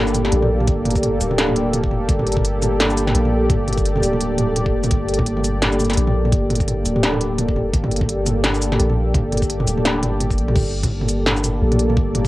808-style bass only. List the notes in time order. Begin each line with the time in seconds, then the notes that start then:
Already playing: G1
0.33 A#1
0.68 G1
1.21 D1
1.91 F1
2.09 G1
3.15 A#1
3.50 G1
4.03 D1
4.74 F1
4.91 G1
5.97 A#1
6.33 G1
6.86 D1
7.56 F1
7.73 G1
8.80 A#1
9.14 G1
9.67 D1
10.03 G1
10.38 A#1
10.56 G1
11.62 A#1
11.97 G1